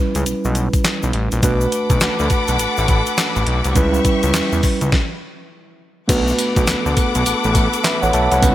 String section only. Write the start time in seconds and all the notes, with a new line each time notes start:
1.43 A4 F#5 B5 D6
3.76 G4 E5 C#6
6.10 A4 F#5 B5 D6
8.43 G4 E5 C#6